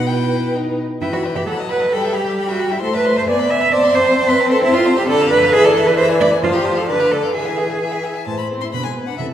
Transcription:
Already playing: B2
0.07 E4 B4 G5
0.55 D#4
1.01 E3 E4 B4 G5
1.12 F#4 E5 B5
1.24 B4 G5
1.35 G4 E5 B5
1.46 F#3 A4 F#5 B5
1.58 D#5 A5
1.69 B4 F#5 B5
1.80 D#5 A5
1.90 G3 A4 G5 B5
2.02 E5 G5
2.13 G4 G5 B5
2.25 E5 G5
2.36 G5 B5
2.49 F#4 E5 G5
2.60 G5 B5
2.71 E4 E5 G5
2.81 A3 A4 C5 C6
2.93 B4 E5 A5
3.05 C5 C6
3.17 C5 E5 A5
3.27 B3 D5 G#5
3.39 E5 B5
3.50 D5 E5 G#5
3.61 E5 B5
3.72 C4 C5 D5 A5
3.83 E5 C6
3.95 C5 A5
4.05 E5 C6
4.16 C5 A5
4.29 B4 E5 C6
4.40 C5 A5
4.50 A4 E5 C6
4.62 E4 C5 A5
4.74 F4 E5 C6
4.86 C5 A5
4.96 G4 E5 C6
5.08 D3 A4 D5 B5
5.21 F5 A5
5.30 B4 D5 B5
5.42 F5 A5
5.53 E3 G#4 E5 B5
5.64 A4 D5 G#5
5.76 E5 B5
5.87 B4 D5 G#5
5.97 C5 E5 B5
6.09 D5 G#5
6.21 D5 E5 B5
6.32 D5 G#5
6.42 F3 F4 C5 A5
6.53 G4 F5 C6
6.65 C5 A5
6.75 A4 F5 C6
6.86 D3 B4 D5 A5
7.00 F5 D6
7.11 A4 D5 A5
7.23 F5 D6
7.34 E3 G#4 E5 G#5
7.45 E5 G#5
7.57 E5 G#5
7.70 E5 G#5
7.81 E5 G#5
7.92 E5 G#5
8.04 E5 G#5
8.14 E5 G#5
8.27 A2 E3 C5 A5
8.39 A3 B5
8.52 C4
8.61 E4 C6
8.73 B2 D3 B4 B5
8.85 G#3 G#5
8.97 B3
9.07 D4 F#5
9.18 C3 E3 A4 E5

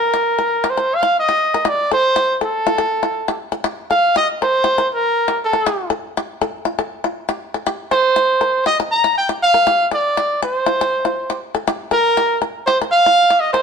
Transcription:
Already playing: A#4
0.14 G4
0.39 A#4
0.64 G4
0.70 C5
0.77 A#4
0.95 F5
1.03 muted five-string banjo stroke
1.20 D#5
1.29 G4
1.54 A#4
1.65 G4 D5
1.91 A4 C5
2.16 G4
2.41 A4
2.67 F4
2.78 A4
3.03 F4
3.28 G4
3.52 A4
3.64 G4
3.90 A4 F5
4.16 G4 D#5
4.42 A#4 C5
4.64 G4
4.78 A#4
4.94 A#4
5.28 G4
5.44 A4
5.53 A#4
5.66 G4
5.90 A4
6.17 G4
6.42 A4
6.65 F4
6.79 A4
7.04 F4
7.29 G4
7.54 A4
7.67 G4
7.91 A4 C5
8.16 muted five-string banjo stroke
8.41 A#4
8.66 G4 D#5
8.80 muted five-string banjo stroke
8.92 A#5
9.04 muted five-string banjo stroke
9.18 G5
9.29 G4
9.42 F5
9.54 A#4
9.67 G4
9.91 A4 D5
10.17 G4
10.42 C5, muted five-string banjo stroke
10.66 F4
10.81 muted five-string banjo stroke
11.05 F4
11.30 G4
11.55 A4
11.68 G4
11.91 A4 A#4
12.17 G4
12.42 A#4
12.66 G4 C5
12.81 A#4
12.92 F5
13.06 F4
13.30 G4
13.40 D#5
13.53 A#4 C5

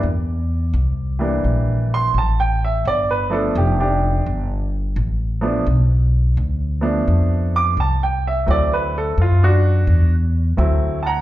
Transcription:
Already playing: D5
0.03 E2
0.74 C2
1.19 E3 G3 A#3 D4
1.44 A#1
1.94 C6
2.14 A1 A5
2.40 G5
2.65 E5
2.85 G1 D5
3.11 B4
3.30 F3 A3 B3 D4 A4
3.55 F1 G4
3.80 D4 G4
4.26 G1
4.96 A1
5.41 F3 A3 B3 D4
5.67 B1
6.37 D2
6.81 F3 A3 B3 D4
7.08 F2
7.56 D6
7.77 C2 A5
8.03 G5
8.27 E5
8.46 D2 F#3 A3 C4 E4
8.51 D5
8.73 B4
8.98 A4
9.18 F#2 F4
9.43 D4 F#4
9.87 E2
10.57 D2 F#3 A3 C4 E4
11.03 F#5 A5
11.07 A#5

